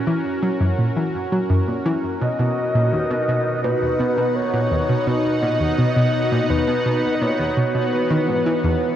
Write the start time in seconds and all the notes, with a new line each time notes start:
Already playing: C#4 F#4 A#4
0.07 E3
0.43 F#3
0.61 F#2
0.78 A#2
0.96 E3
1.32 F#3
1.50 F#2
1.68 A#2
1.86 E3
2.21 B2 D#5
2.39 B2
2.69 D#4
2.75 A#2
2.84 B3
2.93 D#2
3.11 B2
3.29 B2
3.64 A#2 B4 F#5
3.82 D#2
4.00 B2
4.18 B2
4.36 C#5
4.54 A#2
4.71 D#2
4.89 B2
5.07 B2 D#5
5.43 A#2
5.60 D#2
5.78 B2
5.96 B2
6.32 A#2
6.50 D#2 B4
6.68 B2
6.86 B2
7.14 D#5
7.21 A#2 C#5
7.39 D#2
7.57 B2
7.75 B2
7.93 E3 B4
8.11 D#3
8.29 G#2
8.46 E3
8.64 E2